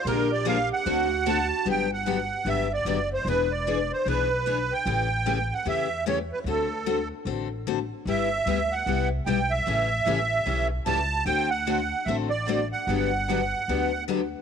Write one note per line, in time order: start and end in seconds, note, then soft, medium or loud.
0.05 0.69 A#1 medium
0.05 0.27 D3 medium
0.05 0.27 F3 medium
0.05 0.27 G#3 medium
0.05 0.27 A#3 medium
0.05 0.28 D4 medium
0.05 0.28 F4 medium
0.05 0.86 G4 medium
0.05 0.28 G#4 medium
0.05 0.31 A#4 medium
0.05 0.28 A#4 medium
0.32 0.47 D5 medium
0.45 0.56 D3 medium
0.45 0.56 F3 medium
0.45 0.57 G#3 medium
0.45 0.57 A#3 medium
0.45 0.57 D4 medium
0.45 0.57 F4 medium
0.45 0.57 G#4 medium
0.45 0.58 A#4 medium
0.45 0.69 F5 loud
0.73 1.47 F#5 medium
0.86 1.50 D2 medium
0.86 1.07 D3 medium
0.86 1.07 A3 medium
0.86 1.07 C4 medium
0.86 1.07 F#4 medium
0.86 1.07 A4 medium
1.26 1.37 D3 medium
1.26 1.37 A3 medium
1.26 1.37 C4 medium
1.26 1.37 F#4 medium
1.26 1.37 A4 medium
1.26 1.68 A5 loud
1.65 2.30 G1 medium
1.65 1.87 D3 medium
1.65 1.87 F#3 medium
1.65 1.87 B3 medium
1.65 1.87 D4 medium
1.65 1.87 G4 medium
1.70 1.91 G5 medium
1.94 2.49 F#5 medium
2.06 2.17 D3 medium
2.06 2.17 F#3 medium
2.06 2.17 B3 medium
2.06 2.18 D4 medium
2.06 2.17 G4 medium
2.45 2.79 G1 medium
2.45 2.67 D3 medium
2.45 2.67 F#3 medium
2.45 2.67 B3 soft
2.45 2.67 D4 medium
2.45 2.67 G4 medium
2.45 2.72 E5 medium
2.74 3.09 D5 medium
2.85 3.19 F#1 medium
2.85 2.97 D3 medium
2.85 2.97 F#3 medium
2.85 2.98 B3 medium
2.85 2.98 D4 medium
2.85 2.98 G4 medium
3.13 3.28 C5 medium
3.25 3.89 E1 medium
3.25 3.47 E3 medium
3.25 3.48 B3 medium
3.25 3.48 D4 medium
3.25 3.48 G#4 medium
3.29 3.53 B4 medium
3.51 3.92 D5 medium
3.67 3.77 E3 medium
3.67 3.78 B3 medium
3.67 3.78 D4 medium
3.67 3.78 G#4 medium
3.92 4.07 C5 medium
4.05 4.70 B1 medium
4.05 4.27 E3 medium
4.05 4.28 B3 medium
4.05 4.28 D4 medium
4.05 4.28 G#4 medium
4.05 4.74 B4 medium
4.46 4.57 E3 medium
4.46 4.57 B3 medium
4.46 4.57 D4 medium
4.46 4.58 G#4 medium
4.73 5.54 G5 medium
4.86 5.50 A1 medium
4.86 5.07 C#3 medium
4.86 5.07 E3 medium
4.86 5.07 A3 medium
4.86 5.07 C#4 medium
4.86 5.07 G4 medium
5.26 5.37 C#3 medium
5.26 5.37 E3 medium
5.26 5.37 A3 medium
5.26 5.37 C#4 medium
5.26 5.38 G4 medium
5.54 5.67 F#5 medium
5.65 6.30 E2 medium
5.65 5.87 C#3 medium
5.65 5.87 E3 medium
5.65 5.87 A3 medium
5.65 5.87 C#4 medium
5.65 5.87 G4 medium
5.65 6.05 E5 medium
6.06 6.17 C#3 medium
6.06 6.17 E3 medium
6.06 6.17 A3 medium
6.06 6.18 C#4 medium
6.06 6.18 G4 medium
6.06 6.19 C#5 medium
6.33 6.39 B4 medium
6.44 7.09 D2 medium
6.44 6.67 D3 medium
6.44 6.67 A3 medium
6.44 6.68 C4 medium
6.44 6.68 F#4 medium
6.44 6.68 A4 medium
6.49 7.08 A4 medium
6.86 6.97 D3 medium
6.86 6.97 A3 medium
6.86 6.98 C4 medium
6.86 6.98 F#4 medium
6.86 6.98 A4 medium
7.25 7.90 A1 medium
7.25 7.47 D3 soft
7.25 7.47 A3 medium
7.25 7.47 C4 medium
7.25 7.47 F#4 medium
7.25 7.48 A4 medium
7.67 7.78 D3 medium
7.67 7.78 A3 medium
7.67 7.78 C4 medium
7.67 7.78 F#4 medium
7.67 7.78 A4 medium
8.05 8.38 G1 medium
8.05 8.28 G3 medium
8.05 8.28 B3 medium
8.05 8.28 E4 medium
8.05 8.28 G4 medium
8.05 8.75 E5 medium
8.46 8.80 D2 medium
8.46 8.58 G3 medium
8.46 8.58 B3 medium
8.46 8.58 E4 medium
8.46 8.59 G4 medium
8.72 9.09 F#5 medium
8.86 9.21 C2 medium
8.86 9.08 G3 medium
8.86 9.08 B3 medium
8.86 9.09 E4 medium
8.86 9.09 G4 medium
9.26 9.61 B1 medium
9.26 9.38 G3 medium
9.26 9.38 B3 medium
9.26 9.39 E4 medium
9.26 9.39 G4 medium
9.26 9.52 G5 medium
9.51 10.68 E5 medium
9.66 9.99 A1 medium
9.66 9.88 C#3 medium
9.66 9.88 E3 medium
9.66 9.88 G3 medium
9.66 9.88 A3 medium
9.66 9.88 C#4 medium
9.66 9.88 E4 medium
9.66 9.88 G4 medium
9.66 9.88 A4 medium
10.06 10.41 A1 medium
10.06 10.18 C#3 medium
10.06 10.18 E3 medium
10.06 10.18 G3 medium
10.06 10.18 A3 medium
10.06 10.18 C#4 medium
10.06 10.18 E4 medium
10.06 10.19 G4 medium
10.06 10.18 A4 medium
10.46 10.81 B1 medium
10.46 10.67 C#3 medium
10.46 10.68 E3 soft
10.46 10.68 G3 medium
10.46 10.68 A3 medium
10.46 10.68 C#4 medium
10.46 10.68 E4 medium
10.46 10.68 G4 medium
10.46 10.68 A4 medium
10.86 11.21 C#2 medium
10.86 10.98 C#3 medium
10.86 10.98 E3 medium
10.86 10.98 G3 medium
10.86 10.98 A3 medium
10.86 10.98 C#4 medium
10.86 10.99 E4 medium
10.86 10.98 G4 medium
10.86 10.99 A4 medium
10.86 11.24 A5 loud
11.26 11.91 D2 medium
11.26 11.47 D3 medium
11.26 11.48 A3 medium
11.26 11.48 C4 medium
11.26 11.48 F#4 medium
11.26 11.48 A4 medium
11.26 11.50 G5 loud
11.50 12.09 F#5 medium
11.67 11.78 D3 medium
11.67 11.79 A3 medium
11.67 11.79 C4 medium
11.67 11.79 F#4 medium
11.67 11.79 A4 medium
12.05 12.71 A1 medium
12.05 12.29 D3 medium
12.05 12.29 A3 medium
12.05 12.29 C4 medium
12.05 12.29 F#4 medium
12.05 12.29 A4 medium
12.05 12.17 E5 medium
12.30 12.68 D5 medium
12.48 12.59 D3 medium
12.48 12.59 A3 medium
12.48 12.59 C4 medium
12.48 12.60 F#4 medium
12.48 12.60 A4 medium
12.72 14.04 F#5 medium
12.87 13.52 G1 medium
12.87 13.09 D3 medium
12.87 13.10 F#3 medium
12.87 13.10 B3 medium
12.87 13.10 D4 medium
12.87 13.10 G4 medium
13.29 13.40 D3 medium
13.29 13.40 F#3 medium
13.29 13.40 B3 medium
13.29 13.40 D4 medium
13.29 13.41 G4 medium
13.68 14.32 D2 medium
13.68 13.90 D3 medium
13.68 13.90 F#3 medium
13.68 13.90 B3 medium
13.68 13.90 D4 medium
13.68 13.90 G4 medium
14.08 14.19 D3 medium
14.08 14.20 F#3 medium
14.08 14.19 B3 medium
14.08 14.20 D4 medium
14.08 14.20 G4 medium